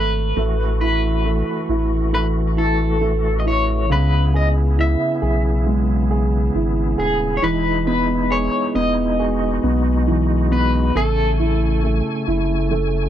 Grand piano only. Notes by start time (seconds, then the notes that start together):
Already playing: A3
0.37 A3
0.81 E4
1.26 A3
1.69 E4
2.13 A3
2.57 E4
3.01 A3
3.45 E4
3.90 C#3
4.34 G#4
4.78 E4
5.22 G#4
5.66 G#3
6.11 G#4
6.55 E4
6.98 G#4
7.42 E3
7.87 B3
8.31 G#4
8.75 B3
9.19 G#4
9.64 B3
10.07 E3
10.51 B3
10.95 A3
11.39 E4
11.83 A3
12.27 E4
12.71 A3